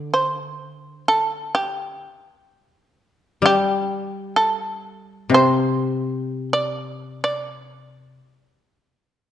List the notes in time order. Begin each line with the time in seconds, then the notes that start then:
Already playing: D3
0.14 C5
1.08 A4
1.55 G4
3.42 G3 G4
4.36 A4
5.30 C3
5.34 C5
6.10 A4
6.53 D5
7.24 D5
8.48 D#5
8.74 D5
9.16 D#5